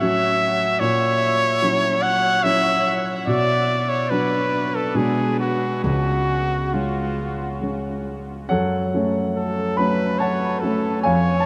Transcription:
0.00 0.83 A2 medium
0.00 0.83 F#3 soft
0.00 0.02 C#4 soft
0.00 0.77 C#4 medium
0.00 0.02 F#4 soft
0.00 0.77 F#4 soft
0.00 0.81 E5 medium
0.80 1.59 A#2 medium
0.80 2.04 C#5 medium
1.62 2.40 F#3 soft
1.62 2.40 C#4 medium
1.62 2.40 E4 medium
2.03 2.45 F#5 medium
2.43 3.23 F#3 medium
2.43 3.23 C#4 medium
2.43 3.23 E4 medium
2.43 2.98 E5 medium
3.27 4.08 B2 medium
3.27 3.91 D5 medium
3.89 4.12 C#5 medium
4.10 4.91 F#3 soft
4.10 4.91 B3 soft
4.10 4.91 D4 soft
4.10 4.76 B4 medium
4.75 4.98 A4 medium
4.95 5.80 B2 medium
4.95 5.79 G#3 soft
4.95 5.79 B3 soft
4.95 5.80 D4 soft
4.95 5.39 G#4 medium
5.39 5.82 F#4 medium
5.83 6.71 C#2 medium
5.83 6.75 F#4 medium
6.74 7.57 G#3 soft
6.74 7.57 C#4 soft
6.74 7.61 F4 medium
7.61 8.46 G#3 soft
7.61 8.46 C#4 soft
8.49 8.92 F#2 medium
8.49 9.74 A4 medium
8.49 9.74 C#5 medium
8.49 9.77 F#5 medium
8.95 9.74 F#3 soft
8.95 9.74 A3 soft
8.95 9.75 C#4 medium
9.36 9.79 A4 medium
9.77 10.58 F#3 soft
9.77 10.58 A3 soft
9.77 10.58 C#4 soft
9.77 10.20 B4 medium
9.77 10.19 B5 medium
10.19 10.62 C#5 medium
10.19 10.99 C#5 medium
10.19 10.99 F#5 medium
10.19 11.03 A5 medium
10.60 10.99 F#3 soft
10.60 11.00 A3 soft
10.60 11.00 C#4 soft
10.60 11.01 A4 medium
11.02 11.43 F2 medium
11.02 11.46 C#5 medium
11.02 11.38 C#5 medium
11.02 11.38 F5 medium
11.02 11.40 G#5 medium
11.40 11.46 A5 medium

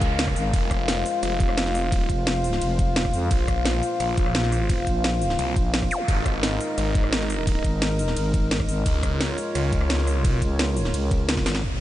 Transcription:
0.00 0.35 C#2 loud
0.00 3.27 G#3 medium
0.00 0.51 C#4 medium
0.00 0.49 A#4 medium
0.00 6.04 F5 medium
0.00 kick loud
0.00 closed hi-hat medium
0.00 noise sweep medium
0.19 snare loud
0.19 closed hi-hat loud
0.19 ride medium
0.28 kick medium
0.28 cross-stick soft
0.36 0.52 G#1 loud
0.36 open hi-hat medium
0.53 1.04 F1 loud
0.53 6.04 F4 medium
0.53 6.04 C5 medium
0.53 kick loud
0.53 closed hi-hat medium
0.53 ride medium
0.71 kick medium
0.71 cross-stick medium
0.71 closed hi-hat medium
0.88 snare loud
0.88 closed hi-hat loud
0.88 ride medium
1.06 open hi-hat medium
1.23 1.83 F1 loud
1.23 cross-stick soft
1.23 closed hi-hat loud
1.23 ride medium
1.40 kick loud
1.40 closed hi-hat medium
1.49 cross-stick medium
1.58 snare loud
1.58 closed hi-hat loud
1.58 ride medium
1.66 snare soft
1.75 cross-stick soft
1.75 open hi-hat medium
1.83 2.08 E1 loud
1.92 kick loud
1.92 closed hi-hat loud
1.92 ride medium
2.10 2.60 F1 loud
2.10 kick medium
2.10 closed hi-hat medium
2.27 snare loud
2.27 closed hi-hat loud
2.27 ride medium
2.44 open hi-hat medium
2.53 snare soft
2.61 3.12 F1 medium
2.61 closed hi-hat loud
2.61 ride medium
2.79 kick loud
2.79 closed hi-hat medium
2.96 snare loud
2.96 closed hi-hat medium
2.96 ride medium
3.05 kick medium
3.05 cross-stick soft
3.14 3.30 F2 loud
3.14 open hi-hat medium
3.31 3.82 A#1 loud
3.31 6.06 A#3 medium
3.31 kick loud
3.31 closed hi-hat medium
3.31 ride medium
3.48 kick medium
3.48 cross-stick medium
3.48 closed hi-hat medium
3.65 snare loud
3.65 closed hi-hat medium
3.65 ride medium
3.83 open hi-hat medium
4.00 4.86 A#1 medium
4.00 cross-stick soft
4.00 closed hi-hat loud
4.00 ride medium
4.18 kick loud
4.18 closed hi-hat medium
4.26 cross-stick medium
4.35 snare loud
4.35 closed hi-hat loud
4.35 ride medium
4.43 snare soft
4.52 cross-stick soft
4.52 open hi-hat medium
4.70 kick loud
4.70 closed hi-hat medium
4.70 ride medium
4.87 5.38 A#1 loud
4.87 kick medium
4.87 closed hi-hat medium
5.04 snare loud
5.04 closed hi-hat medium
5.04 ride medium
5.22 open hi-hat medium
5.30 snare soft
5.39 5.55 C2 loud
5.39 closed hi-hat medium
5.39 ride medium
5.56 5.90 A#1 loud
5.56 kick loud
5.56 closed hi-hat medium
5.74 snare loud
5.74 closed hi-hat medium
5.74 ride medium
5.82 kick medium
5.82 cross-stick soft
5.91 open hi-hat medium
5.91 zap medium
6.08 6.59 G#1 medium
6.08 11.59 G#3 medium
6.08 8.83 D#4 medium
6.08 11.59 A#4 medium
6.08 8.83 D#5 medium
6.08 kick loud
6.08 closed hi-hat medium
6.08 ride medium
6.26 kick medium
6.26 cross-stick medium
6.26 closed hi-hat medium
6.43 snare loud
6.43 closed hi-hat medium
6.43 ride medium
6.60 open hi-hat medium
6.78 7.63 G#1 loud
6.78 cross-stick soft
6.78 closed hi-hat medium
6.78 ride medium
6.95 kick loud
6.95 closed hi-hat medium
7.04 cross-stick medium
7.13 snare loud
7.13 closed hi-hat medium
7.13 ride medium
7.21 snare soft
7.30 cross-stick soft
7.30 open hi-hat medium
7.47 kick loud
7.47 closed hi-hat medium
7.47 ride medium
7.64 8.15 G#1 loud
7.64 kick medium
7.64 closed hi-hat medium
7.82 snare loud
7.82 closed hi-hat medium
7.82 ride medium
7.99 open hi-hat medium
8.08 snare soft
8.16 8.67 G#1 medium
8.16 closed hi-hat medium
8.16 ride medium
8.34 kick loud
8.34 closed hi-hat medium
8.51 snare loud
8.51 closed hi-hat loud
8.51 ride medium
8.60 kick medium
8.60 cross-stick soft
8.69 8.84 G#1 loud
8.69 open hi-hat medium
8.86 9.37 C#2 loud
8.86 11.61 F4 medium
8.86 11.61 C#5 medium
8.86 kick loud
8.86 closed hi-hat loud
8.86 ride medium
9.03 kick medium
9.03 cross-stick medium
9.03 closed hi-hat medium
9.21 snare loud
9.21 closed hi-hat loud
9.21 ride medium
9.38 open hi-hat medium
9.55 10.15 C#2 loud
9.55 cross-stick soft
9.55 closed hi-hat loud
9.55 ride medium
9.73 kick loud
9.73 closed hi-hat medium
9.81 cross-stick medium
9.90 snare loud
9.90 closed hi-hat medium
9.90 ride medium
9.99 snare soft
10.07 cross-stick soft
10.07 open hi-hat medium
10.15 10.41 C2 loud
10.25 kick loud
10.25 closed hi-hat loud
10.25 ride medium
10.42 10.93 C#2 loud
10.42 kick medium
10.42 closed hi-hat medium
10.59 snare loud
10.59 closed hi-hat loud
10.59 ride medium
10.77 open hi-hat medium
10.85 snare soft
10.94 11.45 C#2 medium
10.94 closed hi-hat loud
10.94 ride medium
11.11 kick loud
11.11 closed hi-hat medium
11.29 snare loud
11.29 closed hi-hat loud
11.29 ride medium
11.37 kick medium
11.37 snare soft
11.46 11.62 G#1 loud
11.46 snare medium
11.46 open hi-hat medium
11.55 snare medium
11.63 11.80 F1 medium
11.63 11.80 G#3 medium
11.63 11.80 F4 medium
11.63 11.80 C5 medium
11.63 11.80 F5 medium
11.63 impact medium

